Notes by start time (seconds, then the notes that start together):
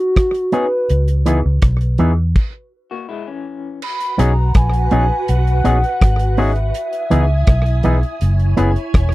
Already playing: F#4
0.16 kick, cross-stick, closed hi-hat
0.34 closed hi-hat
0.52 B3 C#4 D#4 F#4 G#4 B4, closed hi-hat
0.89 C#2, closed hi-hat
1.08 closed hi-hat
1.26 E3 B3 D#4 E4 G#4, closed hi-hat
1.45 C#2
1.62 B1, kick, cross-stick, closed hi-hat
1.81 closed hi-hat
1.98 E2 E3 B3 D#4 E4 G#4, closed hi-hat
2.36 kick, crash
2.91 A#3 F#4
3.09 G#3 E4
3.27 E3 C#4
3.82 F#4 B4 F#5 B5, crash
4.00 closed hi-hat
4.18 B1 B3 C#4 D#4 F#4 G#4 A#5, closed hi-hat
4.54 A#1 G#5, kick, cross-stick, closed hi-hat
4.74 closed hi-hat
4.91 A#1 B3 C#4 D#4 F#4 G#4, closed hi-hat
5.28 B1 F#5, closed hi-hat
5.47 closed hi-hat
5.64 A#1 B3 C#4 D#4 F#4 G#4, closed hi-hat
5.84 closed hi-hat
6.01 G#1, kick, cross-stick, closed hi-hat
6.19 closed hi-hat
6.37 B3 C#4 D#4 F#4 G#4 E5, open hi-hat
6.56 closed hi-hat
6.74 E4 G#5 D#6, closed hi-hat
6.93 closed hi-hat
7.10 C#2 E3 B3 D#4 E4 G#4, closed hi-hat
7.47 B1, kick, cross-stick, closed hi-hat
7.66 closed hi-hat
7.83 B1 E3 B3 D#4 E4 G#4, closed hi-hat
8.03 closed hi-hat
8.21 F#1 E4 C#5 G#5, closed hi-hat
8.40 closed hi-hat
8.57 F#1 B3 C#4 E4 G#4, closed hi-hat
8.76 closed hi-hat
8.94 E1, kick, cross-stick, closed hi-hat